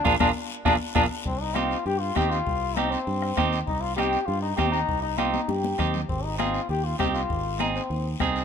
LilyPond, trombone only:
\new Staff \with { instrumentName = "Trombone" } { \time 4/4 \key c \minor \tempo 4 = 199 d'8 d'8 r4 d'8 r8 d'8 r8 | c'8 ees'8 f'4 g'8 f'8 g'8 f'8~ | f'4 ees'8 c'2 r8 | ees'8 f'8 g'4 f'8 ees'8 g'8 ees'8~ |
ees'8 ees'8 f'16. f'32 ees'8 g'4. r8 | c'8 ees'8 f'4 g'8 f'8 g'8 f'8~ | f'4 ees'8 c'4~ c'32 r4 r16. | }